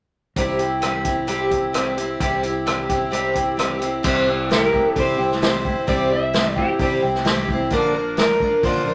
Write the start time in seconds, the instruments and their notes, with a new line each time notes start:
0.36 fingered electric bass C2, twelve-string acoustic guitar C3 G3 C4 E4 G4, kick, closed hi-hat
0.59 twelve-string acoustic guitar C4 E4 G4, closed hi-hat
0.81 twelve-string acoustic guitar G3 C4 E4 G4, cross-stick, closed hi-hat
1.05 twelve-string acoustic guitar C4 E4 G4, kick, closed hi-hat
1.27 twelve-string acoustic guitar C3 G3 C4 E4 G4, closed hi-hat
1.50 twelve-string acoustic guitar C4 E4 G4, kick, closed hi-hat
1.73 twelve-string acoustic guitar G3 C4 E4 G4, cross-stick, closed hi-hat
1.97 twelve-string acoustic guitar C4 E4 G4, closed hi-hat
2.20 fingered electric bass C2, twelve-string acoustic guitar C3 G3 C4 E4 G4, kick, closed hi-hat
2.43 twelve-string acoustic guitar C4 E4 G4, closed hi-hat
2.66 twelve-string acoustic guitar G3 C4 E4 G4, cross-stick, closed hi-hat
2.89 twelve-string acoustic guitar C4 E4 G4, kick, closed hi-hat
3.11 twelve-string acoustic guitar C3 G3 C4 E4 G4, closed hi-hat
3.34 twelve-string acoustic guitar C4 E4 G4, kick, closed hi-hat
3.57 twelve-string acoustic guitar G3 C4 E4 G4, cross-stick, closed hi-hat
3.79 twelve-string acoustic guitar C4 E4 G4, closed hi-hat
4.03 fingered electric bass C2, twelve-string acoustic guitar C3 G3 C4 E4 G4, kick, crash
4.26 twelve-string acoustic guitar C4 E4 G4
4.49 twelve-string acoustic guitar G3 C4 E4 G4, snare, open hi-hat
4.55 clean electric guitar A#4
4.72 twelve-string acoustic guitar C4 E4 G4, kick
4.89 clean electric guitar A4
4.96 twelve-string acoustic guitar C3 G3 C4 E4 G4, fingered electric bass C3, kick, open hi-hat
5.00 clean electric guitar C5
5.18 fingered electric bass C2, twelve-string acoustic guitar C4 E4 G4
5.31 snare
5.41 twelve-string acoustic guitar G3 C4 E4 G4, snare, open hi-hat
5.45 clean electric guitar C5
5.65 twelve-string acoustic guitar C4 E4 G4, kick
5.87 fingered electric bass C2, twelve-string acoustic guitar C3 G3 C4 E4 G4, clean electric guitar D5, kick, open hi-hat
6.10 twelve-string acoustic guitar C4 E4 G4, clean electric guitar E5
6.33 twelve-string acoustic guitar G3 C4 E4 G4, snare, open hi-hat
6.56 twelve-string acoustic guitar C4 E4 G4, clean electric guitar G4, kick
6.79 fingered electric bass C3, twelve-string acoustic guitar C3 G3 C4 E4 G4, kick, open hi-hat
7.02 fingered electric bass C2, twelve-string acoustic guitar C4 E4 G4
7.15 snare
7.25 twelve-string acoustic guitar G3 C4 E4, snare, open hi-hat
7.29 twelve-string acoustic guitar G4
7.48 twelve-string acoustic guitar E4 G4, kick
7.54 twelve-string acoustic guitar C4
7.70 fingered electric bass A#1, twelve-string acoustic guitar A#2 D3 F3 A#3 D4 A#4, kick, open hi-hat
7.94 twelve-string acoustic guitar F3 A#3 D4 A#4
8.17 twelve-string acoustic guitar F3 A#3 D4 A#4, clean electric guitar A#4, snare, open hi-hat
8.40 twelve-string acoustic guitar A#3 D4 A#4, kick
8.45 twelve-string acoustic guitar F3
8.63 fingered electric bass A#2, twelve-string acoustic guitar A#2 D3 F3 A#3 D4 A#4, clean electric guitar C5, kick, open hi-hat
8.86 fingered electric bass A#1, twelve-string acoustic guitar A#3 D4 A#4
8.90 twelve-string acoustic guitar F3